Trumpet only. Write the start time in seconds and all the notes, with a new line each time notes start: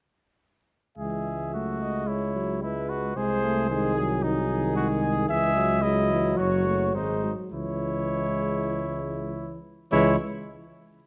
0.98 G#4
1.54 F#4
2.07 E4
2.62 E4
2.89 F#4
3.17 G#4
3.70 G#4
4.23 D#4
4.76 F#4
5.01 G#4
5.28 G#4
5.82 E4
6.37 F#4
6.95 D#4
7.54 E4
9.92 E4